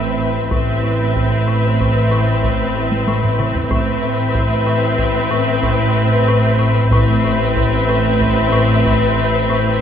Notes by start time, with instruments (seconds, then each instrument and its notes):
Already playing: double bass section A1, cello section A2, viola section C4, glass harmonica C4 E4 B5, violin section B4 E5
0.19 marimba A2
0.51 double bass section A1, cello section A2, marimba A2, glass harmonica C4 E4 B5, viola section C4, violin section B4 E5, taiko
0.84 marimba A2
1.16 marimba A2, taiko
1.48 marimba A2
1.80 marimba A2, taiko
2.11 marimba A2
2.44 marimba A2, taiko
2.75 marimba A2
2.92 taiko high
3.07 marimba A2, taiko high
3.24 taiko low-mid
3.39 marimba A2, taiko mid
3.55 taiko low
3.70 double bass section A1, marimba A2, cello section A2, glass harmonica C4 E4 B5, viola section C4, violin section B4 E5, taiko
4.04 marimba A2
4.35 marimba A2, taiko
4.67 marimba A2
4.98 marimba A2, taiko
5.31 marimba A2
5.63 marimba A2, taiko
5.95 marimba A2
6.28 marimba A2
6.59 marimba A2
6.91 double bass section A1, cello section A2, marimba A2, glass harmonica C4 E4 B5, viola section C4, violin section B4 E5, taiko
7.25 marimba A2
7.56 marimba A2, taiko
7.89 marimba A2
8.21 marimba A2, taiko
8.53 marimba A2
8.86 marimba A2, taiko
9.18 marimba A2
9.50 marimba A2